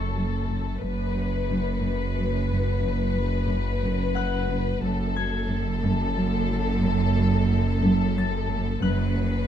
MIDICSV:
0, 0, Header, 1, 7, 480
1, 0, Start_track
1, 0, Key_signature, 3, "minor"
1, 0, Tempo, 666667
1, 598, Time_signature, 3, 2, 24, 8
1, 6818, End_track
2, 0, Start_track
2, 0, Title_t, "Harp"
2, 0, Program_c, 0, 46
2, 0, Note_on_c, 0, 85, 27
2, 0, Note_on_c, 0, 92, 25
2, 1242, Note_off_c, 0, 92, 0
2, 2447, Note_off_c, 0, 85, 0
2, 2987, Note_on_c, 0, 78, 25
2, 2995, Note_on_c, 0, 90, 33
2, 3717, Note_on_c, 0, 92, 38
2, 5795, Note_off_c, 0, 78, 0
2, 5803, Note_off_c, 0, 90, 0
2, 5890, Note_on_c, 0, 93, 33
2, 6352, Note_on_c, 0, 90, 35
2, 6525, Note_off_c, 0, 92, 0
2, 6818, Note_off_c, 0, 90, 0
2, 6818, Note_off_c, 0, 93, 0
2, 6818, End_track
3, 0, Start_track
3, 0, Title_t, "Violin section"
3, 0, Program_c, 1, 48
3, 0, Note_on_c, 1, 69, 30
3, 570, Note_off_c, 1, 69, 0
3, 601, Note_on_c, 1, 71, 34
3, 3451, Note_off_c, 1, 71, 0
3, 3479, Note_on_c, 1, 69, 45
3, 6330, Note_off_c, 1, 69, 0
3, 6360, Note_on_c, 1, 71, 53
3, 6818, Note_off_c, 1, 71, 0
3, 6818, End_track
4, 0, Start_track
4, 0, Title_t, "Cello section"
4, 0, Program_c, 2, 48
4, 121, Note_on_c, 2, 54, 25
4, 264, Note_off_c, 2, 54, 0
4, 359, Note_on_c, 2, 42, 26
4, 503, Note_off_c, 2, 42, 0
4, 601, Note_on_c, 2, 42, 34
4, 744, Note_off_c, 2, 42, 0
4, 839, Note_on_c, 2, 54, 29
4, 983, Note_off_c, 2, 54, 0
4, 1083, Note_on_c, 2, 42, 30
4, 1225, Note_off_c, 2, 42, 0
4, 1316, Note_on_c, 2, 42, 40
4, 1461, Note_off_c, 2, 42, 0
4, 1555, Note_on_c, 2, 54, 30
4, 1700, Note_off_c, 2, 54, 0
4, 1794, Note_on_c, 2, 42, 29
4, 1939, Note_off_c, 2, 42, 0
4, 2040, Note_on_c, 2, 42, 42
4, 2184, Note_off_c, 2, 42, 0
4, 2271, Note_on_c, 2, 54, 30
4, 2417, Note_off_c, 2, 54, 0
4, 2515, Note_on_c, 2, 42, 33
4, 2660, Note_off_c, 2, 42, 0
4, 2759, Note_on_c, 2, 42, 48
4, 2903, Note_off_c, 2, 42, 0
4, 2999, Note_on_c, 2, 54, 34
4, 3143, Note_off_c, 2, 54, 0
4, 3232, Note_on_c, 2, 42, 35
4, 3378, Note_off_c, 2, 42, 0
4, 3478, Note_on_c, 2, 42, 48
4, 3622, Note_off_c, 2, 42, 0
4, 3717, Note_on_c, 2, 54, 36
4, 3861, Note_off_c, 2, 54, 0
4, 3950, Note_on_c, 2, 42, 40
4, 4097, Note_off_c, 2, 42, 0
4, 4193, Note_on_c, 2, 42, 56
4, 4339, Note_off_c, 2, 42, 0
4, 4435, Note_on_c, 2, 54, 42
4, 4580, Note_off_c, 2, 54, 0
4, 4681, Note_on_c, 2, 42, 41
4, 4824, Note_off_c, 2, 42, 0
4, 4918, Note_on_c, 2, 42, 52
4, 5062, Note_off_c, 2, 42, 0
4, 5164, Note_on_c, 2, 54, 43
4, 5306, Note_off_c, 2, 54, 0
4, 5402, Note_on_c, 2, 42, 44
4, 5545, Note_off_c, 2, 42, 0
4, 5637, Note_on_c, 2, 42, 63
4, 5781, Note_off_c, 2, 42, 0
4, 5883, Note_on_c, 2, 54, 42
4, 6025, Note_off_c, 2, 54, 0
4, 6118, Note_on_c, 2, 42, 43
4, 6262, Note_off_c, 2, 42, 0
4, 6360, Note_on_c, 2, 42, 53
4, 6503, Note_off_c, 2, 42, 0
4, 6604, Note_on_c, 2, 54, 40
4, 6747, Note_off_c, 2, 54, 0
4, 6818, End_track
5, 0, Start_track
5, 0, Title_t, "Cello section"
5, 0, Program_c, 3, 48
5, 0, Note_on_c, 3, 42, 30
5, 569, Note_off_c, 3, 42, 0
5, 603, Note_on_c, 3, 42, 34
5, 3452, Note_off_c, 3, 42, 0
5, 3475, Note_on_c, 3, 42, 41
5, 6328, Note_off_c, 3, 42, 0
5, 6351, Note_on_c, 3, 42, 47
5, 6818, Note_off_c, 3, 42, 0
5, 6818, End_track
6, 0, Start_track
6, 0, Title_t, "Double bass section"
6, 0, Program_c, 4, 48
6, 0, Note_on_c, 4, 30, 29
6, 571, Note_off_c, 4, 30, 0
6, 596, Note_on_c, 4, 30, 35
6, 3448, Note_off_c, 4, 30, 0
6, 3476, Note_on_c, 4, 30, 45
6, 6328, Note_off_c, 4, 30, 0
6, 6357, Note_on_c, 4, 30, 50
6, 6818, Note_off_c, 4, 30, 0
6, 6818, End_track
7, 0, Start_track
7, 0, Title_t, "Sub bass"
7, 0, Program_c, 5, 38
7, 0, Note_on_c, 5, 30, 50
7, 567, Note_off_c, 5, 30, 0
7, 602, Note_on_c, 5, 30, 53
7, 3452, Note_off_c, 5, 30, 0
7, 3470, Note_on_c, 5, 30, 56
7, 6326, Note_off_c, 5, 30, 0
7, 6358, Note_on_c, 5, 30, 61
7, 6818, Note_off_c, 5, 30, 0
7, 6818, End_track
0, 0, End_of_file